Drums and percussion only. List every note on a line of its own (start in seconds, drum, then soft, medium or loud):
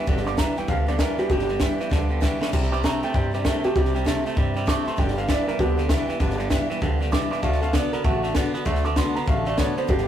0.07 kick loud
0.07 snare soft
0.17 snare soft
0.26 snare soft
0.38 kick medium
0.38 snare loud
0.38 hi-hat pedal medium
0.57 snare soft
0.68 kick loud
0.68 snare soft
0.87 snare soft
0.99 kick medium
0.99 snare loud
0.99 hi-hat pedal medium
1.18 snare soft
1.30 kick loud
1.30 snare soft
1.39 snare soft
1.48 snare soft
1.60 kick loud
1.60 snare loud
1.60 hi-hat pedal medium
1.80 snare soft
1.91 kick loud
1.91 snare medium
2.22 kick medium
2.22 snare loud
2.22 hi-hat pedal medium
2.42 snare medium
2.53 kick loud
2.53 snare soft
2.53 crash medium
2.63 snare soft
2.73 snare soft
2.84 kick medium
2.84 snare loud
2.84 hi-hat pedal medium
3.02 snare soft
3.14 kick loud
3.14 snare soft
3.33 snare soft
3.45 kick medium
3.45 snare loud
3.45 hi-hat pedal medium
3.63 snare soft
3.76 kick loud
3.76 snare soft
3.85 snare soft
3.95 snare soft
4.06 kick medium
4.06 snare loud
4.06 hi-hat pedal medium
4.25 snare soft
4.37 kick loud
4.37 snare soft
4.56 snare soft
4.67 kick loud
4.67 snare loud
4.67 hi-hat pedal medium
4.87 snare soft
4.98 kick loud
4.98 snare soft
5.08 snare soft
5.17 snare soft
5.29 kick medium
5.29 snare loud
5.29 hi-hat pedal medium
5.48 snare soft
5.59 kick loud
5.59 snare soft
5.78 snare soft
5.89 kick medium
5.89 snare loud
5.89 hi-hat pedal medium
6.09 snare soft
6.20 kick loud
6.20 snare soft
6.30 snare soft
6.39 snare soft
6.50 kick medium
6.50 snare loud
6.50 hi-hat pedal medium
6.70 snare soft
6.82 kick loud
6.82 snare soft
7.01 snare soft
7.13 kick medium
7.13 snare loud
7.13 hi-hat pedal medium
7.32 snare soft
7.43 kick loud
7.43 snare soft
7.52 snare soft
7.62 snare soft
7.73 kick medium
7.73 snare loud
7.73 hi-hat pedal medium
7.92 snare soft
8.04 kick loud
8.04 snare soft
8.23 snare soft
8.35 kick loud
8.35 snare loud
8.35 hi-hat pedal medium
8.54 snare soft
8.66 kick loud
8.66 snare soft
8.75 snare soft
8.84 snare soft
8.96 kick medium
8.96 snare loud
8.96 hi-hat pedal loud
9.15 snare soft
9.27 kick loud
9.27 snare soft
9.45 snare soft
9.58 kick medium
9.58 snare loud
9.58 hi-hat pedal medium
9.77 snare soft
9.88 kick loud
9.88 snare soft
9.98 snare soft